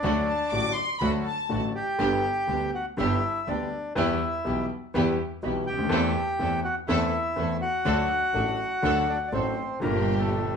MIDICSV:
0, 0, Header, 1, 6, 480
1, 0, Start_track
1, 0, Tempo, 489396
1, 36, Time_signature, 4, 2, 24, 8
1, 10361, End_track
2, 0, Start_track
2, 0, Title_t, "Violin section"
2, 0, Program_c, 0, 48
2, 277, Note_on_c, 0, 81, 79
2, 493, Note_on_c, 0, 86, 91
2, 500, Note_off_c, 0, 81, 0
2, 727, Note_on_c, 0, 84, 88
2, 745, Note_off_c, 0, 86, 0
2, 969, Note_on_c, 0, 83, 79
2, 982, Note_off_c, 0, 84, 0
2, 1083, Note_off_c, 0, 83, 0
2, 1227, Note_on_c, 0, 81, 76
2, 1569, Note_off_c, 0, 81, 0
2, 10361, End_track
3, 0, Start_track
3, 0, Title_t, "Bandoneon"
3, 0, Program_c, 1, 23
3, 0, Note_on_c, 1, 62, 62
3, 0, Note_on_c, 1, 74, 88
3, 710, Note_off_c, 1, 74, 0
3, 719, Note_off_c, 1, 62, 0
3, 1719, Note_on_c, 1, 67, 85
3, 1738, Note_on_c, 1, 79, 102
3, 2647, Note_off_c, 1, 67, 0
3, 2657, Note_off_c, 1, 79, 0
3, 2693, Note_on_c, 1, 66, 66
3, 2697, Note_on_c, 1, 78, 81
3, 2800, Note_off_c, 1, 66, 0
3, 2803, Note_off_c, 1, 78, 0
3, 2923, Note_on_c, 1, 64, 76
3, 2930, Note_on_c, 1, 76, 90
3, 3372, Note_off_c, 1, 64, 0
3, 3413, Note_on_c, 1, 62, 63
3, 3413, Note_on_c, 1, 74, 69
3, 3423, Note_off_c, 1, 76, 0
3, 3857, Note_off_c, 1, 62, 0
3, 3857, Note_off_c, 1, 74, 0
3, 3891, Note_on_c, 1, 76, 77
3, 3897, Note_on_c, 1, 64, 60
3, 4569, Note_off_c, 1, 76, 0
3, 4572, Note_off_c, 1, 64, 0
3, 5559, Note_on_c, 1, 79, 109
3, 5572, Note_on_c, 1, 67, 85
3, 6473, Note_off_c, 1, 79, 0
3, 6479, Note_off_c, 1, 67, 0
3, 6516, Note_on_c, 1, 78, 86
3, 6518, Note_on_c, 1, 66, 68
3, 6623, Note_off_c, 1, 78, 0
3, 6624, Note_off_c, 1, 66, 0
3, 6745, Note_on_c, 1, 64, 77
3, 6750, Note_on_c, 1, 76, 93
3, 7423, Note_off_c, 1, 64, 0
3, 7425, Note_off_c, 1, 76, 0
3, 7469, Note_on_c, 1, 66, 72
3, 7472, Note_on_c, 1, 78, 105
3, 8919, Note_on_c, 1, 74, 85
3, 8930, Note_on_c, 1, 62, 74
3, 8994, Note_off_c, 1, 74, 0
3, 9003, Note_off_c, 1, 62, 0
3, 9092, Note_on_c, 1, 74, 62
3, 9113, Note_off_c, 1, 66, 0
3, 9115, Note_off_c, 1, 78, 0
3, 9148, Note_on_c, 1, 72, 80
3, 9156, Note_off_c, 1, 74, 0
3, 9158, Note_on_c, 1, 60, 55
3, 9600, Note_off_c, 1, 72, 0
3, 9606, Note_off_c, 1, 60, 0
3, 9632, Note_on_c, 1, 70, 80
3, 9641, Note_on_c, 1, 58, 65
3, 9975, Note_off_c, 1, 58, 0
3, 9995, Note_on_c, 1, 69, 70
3, 10006, Note_off_c, 1, 70, 0
3, 10025, Note_on_c, 1, 57, 60
3, 10330, Note_off_c, 1, 69, 0
3, 10347, Note_off_c, 1, 57, 0
3, 10361, End_track
4, 0, Start_track
4, 0, Title_t, "String section"
4, 0, Program_c, 2, 48
4, 34, Note_on_c, 2, 57, 84
4, 35, Note_on_c, 2, 62, 74
4, 38, Note_on_c, 2, 66, 85
4, 237, Note_off_c, 2, 57, 0
4, 238, Note_off_c, 2, 62, 0
4, 239, Note_off_c, 2, 66, 0
4, 518, Note_on_c, 2, 62, 44
4, 521, Note_on_c, 2, 57, 52
4, 523, Note_on_c, 2, 66, 53
4, 719, Note_off_c, 2, 62, 0
4, 721, Note_off_c, 2, 57, 0
4, 721, Note_off_c, 2, 66, 0
4, 990, Note_on_c, 2, 57, 74
4, 995, Note_on_c, 2, 62, 65
4, 995, Note_on_c, 2, 66, 85
4, 1196, Note_off_c, 2, 57, 0
4, 1198, Note_off_c, 2, 62, 0
4, 1198, Note_off_c, 2, 66, 0
4, 1467, Note_on_c, 2, 57, 45
4, 1467, Note_on_c, 2, 62, 43
4, 1470, Note_on_c, 2, 66, 49
4, 1676, Note_off_c, 2, 57, 0
4, 1676, Note_off_c, 2, 62, 0
4, 1678, Note_off_c, 2, 66, 0
4, 1955, Note_on_c, 2, 67, 93
4, 1956, Note_on_c, 2, 62, 73
4, 1957, Note_on_c, 2, 59, 73
4, 2162, Note_off_c, 2, 67, 0
4, 2163, Note_off_c, 2, 59, 0
4, 2163, Note_off_c, 2, 62, 0
4, 2439, Note_on_c, 2, 62, 44
4, 2440, Note_on_c, 2, 59, 43
4, 2447, Note_on_c, 2, 67, 52
4, 2645, Note_off_c, 2, 59, 0
4, 2645, Note_off_c, 2, 62, 0
4, 2649, Note_off_c, 2, 67, 0
4, 2932, Note_on_c, 2, 59, 76
4, 2933, Note_on_c, 2, 62, 78
4, 2936, Note_on_c, 2, 67, 86
4, 3132, Note_off_c, 2, 59, 0
4, 3133, Note_off_c, 2, 62, 0
4, 3134, Note_off_c, 2, 67, 0
4, 3404, Note_on_c, 2, 59, 45
4, 3409, Note_on_c, 2, 62, 42
4, 3409, Note_on_c, 2, 67, 58
4, 3607, Note_off_c, 2, 59, 0
4, 3610, Note_off_c, 2, 62, 0
4, 3610, Note_off_c, 2, 67, 0
4, 3888, Note_on_c, 2, 59, 77
4, 3889, Note_on_c, 2, 64, 75
4, 3893, Note_on_c, 2, 67, 90
4, 4089, Note_off_c, 2, 59, 0
4, 4090, Note_off_c, 2, 64, 0
4, 4092, Note_off_c, 2, 67, 0
4, 4373, Note_on_c, 2, 59, 54
4, 4373, Note_on_c, 2, 64, 46
4, 4374, Note_on_c, 2, 67, 55
4, 4571, Note_off_c, 2, 59, 0
4, 4571, Note_off_c, 2, 64, 0
4, 4572, Note_off_c, 2, 67, 0
4, 4850, Note_on_c, 2, 59, 78
4, 4856, Note_on_c, 2, 64, 75
4, 4858, Note_on_c, 2, 67, 94
4, 5049, Note_off_c, 2, 59, 0
4, 5052, Note_off_c, 2, 64, 0
4, 5053, Note_off_c, 2, 67, 0
4, 5327, Note_on_c, 2, 59, 54
4, 5331, Note_on_c, 2, 64, 45
4, 5331, Note_on_c, 2, 67, 55
4, 5526, Note_off_c, 2, 59, 0
4, 5528, Note_off_c, 2, 64, 0
4, 5528, Note_off_c, 2, 67, 0
4, 5803, Note_on_c, 2, 60, 83
4, 5804, Note_on_c, 2, 64, 82
4, 5808, Note_on_c, 2, 69, 93
4, 6001, Note_off_c, 2, 60, 0
4, 6002, Note_off_c, 2, 64, 0
4, 6004, Note_off_c, 2, 69, 0
4, 6283, Note_on_c, 2, 60, 46
4, 6284, Note_on_c, 2, 69, 61
4, 6285, Note_on_c, 2, 64, 43
4, 6479, Note_off_c, 2, 60, 0
4, 6480, Note_off_c, 2, 69, 0
4, 6481, Note_off_c, 2, 64, 0
4, 6752, Note_on_c, 2, 60, 79
4, 6754, Note_on_c, 2, 64, 73
4, 6756, Note_on_c, 2, 69, 99
4, 6952, Note_off_c, 2, 60, 0
4, 6953, Note_off_c, 2, 64, 0
4, 6954, Note_off_c, 2, 69, 0
4, 7230, Note_on_c, 2, 60, 48
4, 7231, Note_on_c, 2, 64, 49
4, 7237, Note_on_c, 2, 69, 52
4, 7429, Note_off_c, 2, 60, 0
4, 7429, Note_off_c, 2, 64, 0
4, 7432, Note_off_c, 2, 69, 0
4, 7700, Note_on_c, 2, 66, 66
4, 7701, Note_on_c, 2, 62, 82
4, 7703, Note_on_c, 2, 69, 96
4, 7904, Note_off_c, 2, 62, 0
4, 7904, Note_off_c, 2, 66, 0
4, 7905, Note_off_c, 2, 69, 0
4, 8187, Note_on_c, 2, 62, 50
4, 8189, Note_on_c, 2, 66, 47
4, 8189, Note_on_c, 2, 69, 49
4, 8388, Note_off_c, 2, 62, 0
4, 8389, Note_off_c, 2, 66, 0
4, 8389, Note_off_c, 2, 69, 0
4, 8667, Note_on_c, 2, 62, 81
4, 8668, Note_on_c, 2, 66, 73
4, 8675, Note_on_c, 2, 69, 90
4, 8870, Note_off_c, 2, 62, 0
4, 8870, Note_off_c, 2, 66, 0
4, 8874, Note_off_c, 2, 69, 0
4, 9148, Note_on_c, 2, 62, 49
4, 9149, Note_on_c, 2, 66, 40
4, 9150, Note_on_c, 2, 69, 56
4, 9353, Note_off_c, 2, 62, 0
4, 9354, Note_off_c, 2, 66, 0
4, 9354, Note_off_c, 2, 69, 0
4, 9640, Note_on_c, 2, 55, 96
4, 9644, Note_on_c, 2, 67, 94
4, 9645, Note_on_c, 2, 62, 76
4, 10323, Note_off_c, 2, 55, 0
4, 10325, Note_off_c, 2, 62, 0
4, 10325, Note_off_c, 2, 67, 0
4, 10361, End_track
5, 0, Start_track
5, 0, Title_t, "Grand piano"
5, 0, Program_c, 3, 0
5, 35, Note_on_c, 3, 54, 71
5, 36, Note_on_c, 3, 50, 84
5, 38, Note_on_c, 3, 38, 92
5, 39, Note_on_c, 3, 66, 87
5, 42, Note_on_c, 3, 57, 75
5, 238, Note_off_c, 3, 54, 0
5, 239, Note_off_c, 3, 38, 0
5, 239, Note_off_c, 3, 50, 0
5, 240, Note_off_c, 3, 66, 0
5, 241, Note_off_c, 3, 57, 0
5, 511, Note_on_c, 3, 50, 48
5, 514, Note_on_c, 3, 45, 53
5, 514, Note_on_c, 3, 54, 39
5, 515, Note_on_c, 3, 33, 53
5, 515, Note_on_c, 3, 57, 41
5, 521, Note_on_c, 3, 66, 50
5, 716, Note_off_c, 3, 50, 0
5, 717, Note_off_c, 3, 33, 0
5, 717, Note_off_c, 3, 45, 0
5, 717, Note_off_c, 3, 54, 0
5, 717, Note_off_c, 3, 57, 0
5, 721, Note_off_c, 3, 66, 0
5, 992, Note_on_c, 3, 50, 76
5, 994, Note_on_c, 3, 54, 60
5, 994, Note_on_c, 3, 57, 60
5, 995, Note_on_c, 3, 38, 78
5, 995, Note_on_c, 3, 66, 72
5, 1198, Note_off_c, 3, 38, 0
5, 1198, Note_off_c, 3, 54, 0
5, 1198, Note_off_c, 3, 57, 0
5, 1198, Note_off_c, 3, 66, 0
5, 1199, Note_off_c, 3, 50, 0
5, 1463, Note_on_c, 3, 57, 42
5, 1464, Note_on_c, 3, 50, 48
5, 1465, Note_on_c, 3, 33, 56
5, 1466, Note_on_c, 3, 45, 60
5, 1466, Note_on_c, 3, 54, 43
5, 1470, Note_on_c, 3, 66, 52
5, 1674, Note_off_c, 3, 57, 0
5, 1675, Note_off_c, 3, 33, 0
5, 1675, Note_off_c, 3, 50, 0
5, 1676, Note_off_c, 3, 45, 0
5, 1676, Note_off_c, 3, 54, 0
5, 1678, Note_off_c, 3, 66, 0
5, 1946, Note_on_c, 3, 50, 78
5, 1947, Note_on_c, 3, 43, 90
5, 1947, Note_on_c, 3, 55, 68
5, 1948, Note_on_c, 3, 31, 93
5, 1949, Note_on_c, 3, 59, 72
5, 1951, Note_on_c, 3, 67, 83
5, 2158, Note_off_c, 3, 43, 0
5, 2158, Note_off_c, 3, 50, 0
5, 2158, Note_off_c, 3, 55, 0
5, 2159, Note_off_c, 3, 31, 0
5, 2159, Note_off_c, 3, 59, 0
5, 2160, Note_off_c, 3, 67, 0
5, 2423, Note_on_c, 3, 50, 50
5, 2427, Note_on_c, 3, 55, 43
5, 2429, Note_on_c, 3, 67, 46
5, 2430, Note_on_c, 3, 38, 55
5, 2432, Note_on_c, 3, 59, 44
5, 2639, Note_off_c, 3, 55, 0
5, 2640, Note_off_c, 3, 38, 0
5, 2640, Note_off_c, 3, 67, 0
5, 2641, Note_off_c, 3, 59, 0
5, 2642, Note_off_c, 3, 50, 0
5, 2912, Note_on_c, 3, 50, 66
5, 2914, Note_on_c, 3, 43, 79
5, 2915, Note_on_c, 3, 31, 86
5, 2917, Note_on_c, 3, 59, 60
5, 2918, Note_on_c, 3, 55, 55
5, 2918, Note_on_c, 3, 67, 70
5, 3122, Note_off_c, 3, 50, 0
5, 3123, Note_off_c, 3, 43, 0
5, 3124, Note_off_c, 3, 31, 0
5, 3125, Note_off_c, 3, 55, 0
5, 3125, Note_off_c, 3, 59, 0
5, 3125, Note_off_c, 3, 67, 0
5, 3404, Note_on_c, 3, 38, 56
5, 3405, Note_on_c, 3, 55, 46
5, 3405, Note_on_c, 3, 67, 52
5, 3406, Note_on_c, 3, 50, 54
5, 3408, Note_on_c, 3, 59, 44
5, 3607, Note_off_c, 3, 38, 0
5, 3608, Note_off_c, 3, 55, 0
5, 3608, Note_off_c, 3, 67, 0
5, 3609, Note_off_c, 3, 50, 0
5, 3609, Note_off_c, 3, 59, 0
5, 3877, Note_on_c, 3, 52, 87
5, 3882, Note_on_c, 3, 40, 97
5, 3884, Note_on_c, 3, 55, 73
5, 3884, Note_on_c, 3, 59, 64
5, 3885, Note_on_c, 3, 67, 78
5, 4086, Note_off_c, 3, 40, 0
5, 4086, Note_off_c, 3, 52, 0
5, 4087, Note_off_c, 3, 55, 0
5, 4087, Note_off_c, 3, 59, 0
5, 4088, Note_off_c, 3, 67, 0
5, 4361, Note_on_c, 3, 35, 57
5, 4364, Note_on_c, 3, 55, 45
5, 4364, Note_on_c, 3, 59, 43
5, 4365, Note_on_c, 3, 52, 46
5, 4369, Note_on_c, 3, 47, 57
5, 4370, Note_on_c, 3, 67, 55
5, 4565, Note_off_c, 3, 35, 0
5, 4567, Note_off_c, 3, 52, 0
5, 4567, Note_off_c, 3, 55, 0
5, 4567, Note_off_c, 3, 59, 0
5, 4569, Note_off_c, 3, 47, 0
5, 4570, Note_off_c, 3, 67, 0
5, 4846, Note_on_c, 3, 52, 84
5, 4847, Note_on_c, 3, 55, 66
5, 4850, Note_on_c, 3, 59, 57
5, 4852, Note_on_c, 3, 40, 82
5, 4857, Note_on_c, 3, 67, 72
5, 5047, Note_off_c, 3, 55, 0
5, 5048, Note_off_c, 3, 52, 0
5, 5049, Note_off_c, 3, 59, 0
5, 5050, Note_off_c, 3, 40, 0
5, 5052, Note_off_c, 3, 67, 0
5, 5324, Note_on_c, 3, 35, 58
5, 5324, Note_on_c, 3, 55, 46
5, 5326, Note_on_c, 3, 47, 61
5, 5326, Note_on_c, 3, 52, 48
5, 5326, Note_on_c, 3, 59, 45
5, 5330, Note_on_c, 3, 67, 59
5, 5524, Note_off_c, 3, 55, 0
5, 5525, Note_off_c, 3, 35, 0
5, 5525, Note_off_c, 3, 47, 0
5, 5525, Note_off_c, 3, 52, 0
5, 5525, Note_off_c, 3, 59, 0
5, 5527, Note_off_c, 3, 67, 0
5, 5618, Note_on_c, 3, 37, 60
5, 5672, Note_on_c, 3, 38, 72
5, 5679, Note_off_c, 3, 37, 0
5, 5723, Note_on_c, 3, 39, 72
5, 5736, Note_off_c, 3, 38, 0
5, 5778, Note_on_c, 3, 52, 86
5, 5779, Note_on_c, 3, 69, 87
5, 5780, Note_on_c, 3, 40, 98
5, 5780, Note_on_c, 3, 57, 76
5, 5781, Note_on_c, 3, 60, 77
5, 5792, Note_off_c, 3, 39, 0
5, 5989, Note_off_c, 3, 69, 0
5, 5990, Note_off_c, 3, 40, 0
5, 5990, Note_off_c, 3, 52, 0
5, 5990, Note_off_c, 3, 57, 0
5, 5990, Note_off_c, 3, 60, 0
5, 6268, Note_on_c, 3, 60, 46
5, 6269, Note_on_c, 3, 57, 42
5, 6270, Note_on_c, 3, 52, 61
5, 6272, Note_on_c, 3, 69, 51
5, 6273, Note_on_c, 3, 40, 63
5, 6472, Note_off_c, 3, 57, 0
5, 6472, Note_off_c, 3, 60, 0
5, 6474, Note_off_c, 3, 40, 0
5, 6474, Note_off_c, 3, 52, 0
5, 6474, Note_off_c, 3, 69, 0
5, 6752, Note_on_c, 3, 40, 77
5, 6752, Note_on_c, 3, 52, 85
5, 6753, Note_on_c, 3, 57, 66
5, 6759, Note_on_c, 3, 69, 76
5, 6760, Note_on_c, 3, 60, 65
5, 6952, Note_off_c, 3, 40, 0
5, 6953, Note_off_c, 3, 52, 0
5, 6953, Note_off_c, 3, 57, 0
5, 6955, Note_off_c, 3, 69, 0
5, 6956, Note_off_c, 3, 60, 0
5, 7220, Note_on_c, 3, 52, 62
5, 7220, Note_on_c, 3, 60, 43
5, 7223, Note_on_c, 3, 40, 61
5, 7223, Note_on_c, 3, 57, 46
5, 7223, Note_on_c, 3, 69, 57
5, 7424, Note_off_c, 3, 60, 0
5, 7425, Note_off_c, 3, 40, 0
5, 7425, Note_off_c, 3, 52, 0
5, 7425, Note_off_c, 3, 57, 0
5, 7425, Note_off_c, 3, 69, 0
5, 7702, Note_on_c, 3, 54, 73
5, 7703, Note_on_c, 3, 50, 93
5, 7704, Note_on_c, 3, 62, 78
5, 7705, Note_on_c, 3, 38, 86
5, 7706, Note_on_c, 3, 57, 73
5, 7706, Note_on_c, 3, 69, 90
5, 7905, Note_off_c, 3, 50, 0
5, 7905, Note_off_c, 3, 54, 0
5, 7905, Note_off_c, 3, 62, 0
5, 7906, Note_off_c, 3, 38, 0
5, 7907, Note_off_c, 3, 57, 0
5, 7907, Note_off_c, 3, 69, 0
5, 8179, Note_on_c, 3, 54, 47
5, 8181, Note_on_c, 3, 45, 53
5, 8181, Note_on_c, 3, 57, 42
5, 8182, Note_on_c, 3, 33, 53
5, 8184, Note_on_c, 3, 62, 42
5, 8189, Note_on_c, 3, 69, 55
5, 8383, Note_off_c, 3, 54, 0
5, 8385, Note_off_c, 3, 33, 0
5, 8385, Note_off_c, 3, 45, 0
5, 8385, Note_off_c, 3, 57, 0
5, 8386, Note_off_c, 3, 62, 0
5, 8389, Note_off_c, 3, 69, 0
5, 8654, Note_on_c, 3, 54, 66
5, 8656, Note_on_c, 3, 50, 81
5, 8658, Note_on_c, 3, 38, 81
5, 8658, Note_on_c, 3, 57, 62
5, 8658, Note_on_c, 3, 62, 63
5, 8661, Note_on_c, 3, 69, 76
5, 8863, Note_off_c, 3, 54, 0
5, 8864, Note_off_c, 3, 50, 0
5, 8865, Note_off_c, 3, 38, 0
5, 8865, Note_off_c, 3, 57, 0
5, 8865, Note_off_c, 3, 62, 0
5, 8866, Note_off_c, 3, 69, 0
5, 9141, Note_on_c, 3, 54, 49
5, 9142, Note_on_c, 3, 57, 46
5, 9142, Note_on_c, 3, 69, 57
5, 9144, Note_on_c, 3, 45, 60
5, 9149, Note_on_c, 3, 33, 57
5, 9149, Note_on_c, 3, 62, 44
5, 9350, Note_off_c, 3, 54, 0
5, 9350, Note_off_c, 3, 57, 0
5, 9350, Note_off_c, 3, 69, 0
5, 9351, Note_off_c, 3, 45, 0
5, 9354, Note_off_c, 3, 33, 0
5, 9354, Note_off_c, 3, 62, 0
5, 9610, Note_on_c, 3, 50, 72
5, 9623, Note_on_c, 3, 55, 65
5, 9630, Note_on_c, 3, 43, 87
5, 9631, Note_on_c, 3, 31, 83
5, 9637, Note_on_c, 3, 46, 78
5, 9646, Note_on_c, 3, 67, 82
5, 10308, Note_off_c, 3, 50, 0
5, 10314, Note_off_c, 3, 55, 0
5, 10318, Note_off_c, 3, 43, 0
5, 10319, Note_off_c, 3, 31, 0
5, 10322, Note_off_c, 3, 46, 0
5, 10326, Note_off_c, 3, 67, 0
5, 10361, End_track
6, 0, Start_track
6, 0, Title_t, "Double bass"
6, 0, Program_c, 4, 43
6, 32, Note_on_c, 4, 38, 90
6, 236, Note_off_c, 4, 38, 0
6, 514, Note_on_c, 4, 33, 64
6, 717, Note_off_c, 4, 33, 0
6, 995, Note_on_c, 4, 38, 89
6, 1198, Note_off_c, 4, 38, 0
6, 1480, Note_on_c, 4, 33, 60
6, 1683, Note_off_c, 4, 33, 0
6, 1961, Note_on_c, 4, 31, 83
6, 2165, Note_off_c, 4, 31, 0
6, 2444, Note_on_c, 4, 38, 58
6, 2647, Note_off_c, 4, 38, 0
6, 2930, Note_on_c, 4, 31, 87
6, 3131, Note_off_c, 4, 31, 0
6, 3413, Note_on_c, 4, 38, 67
6, 3612, Note_off_c, 4, 38, 0
6, 3893, Note_on_c, 4, 40, 95
6, 4092, Note_off_c, 4, 40, 0
6, 4375, Note_on_c, 4, 35, 68
6, 4572, Note_off_c, 4, 35, 0
6, 4855, Note_on_c, 4, 40, 89
6, 5052, Note_off_c, 4, 40, 0
6, 5327, Note_on_c, 4, 35, 59
6, 5526, Note_off_c, 4, 35, 0
6, 5576, Note_on_c, 4, 38, 58
6, 5797, Note_off_c, 4, 38, 0
6, 5802, Note_on_c, 4, 40, 97
6, 6001, Note_off_c, 4, 40, 0
6, 6275, Note_on_c, 4, 40, 67
6, 6476, Note_off_c, 4, 40, 0
6, 6753, Note_on_c, 4, 40, 84
6, 6953, Note_off_c, 4, 40, 0
6, 7226, Note_on_c, 4, 40, 70
6, 7427, Note_off_c, 4, 40, 0
6, 7702, Note_on_c, 4, 38, 95
6, 7904, Note_off_c, 4, 38, 0
6, 8177, Note_on_c, 4, 33, 70
6, 8383, Note_off_c, 4, 33, 0
6, 8663, Note_on_c, 4, 38, 83
6, 8868, Note_off_c, 4, 38, 0
6, 9149, Note_on_c, 4, 33, 66
6, 9354, Note_off_c, 4, 33, 0
6, 9634, Note_on_c, 4, 31, 102
6, 10320, Note_off_c, 4, 31, 0
6, 10361, End_track
0, 0, End_of_file